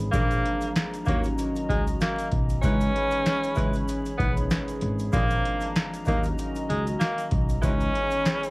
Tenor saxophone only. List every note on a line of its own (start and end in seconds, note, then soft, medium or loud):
0.12 0.71 A#3 loud
1.06 1.22 A#3 medium
1.69 1.85 G#3 medium
2.01 2.29 A#3 medium
2.62 3.83 C#4 loud
4.18 4.34 B3 medium
5.13 5.72 A#3 loud
6.07 6.23 A#3 medium
6.69 6.85 G#3 medium
6.99 7.28 A#3 medium
7.64 8.50 C#4 loud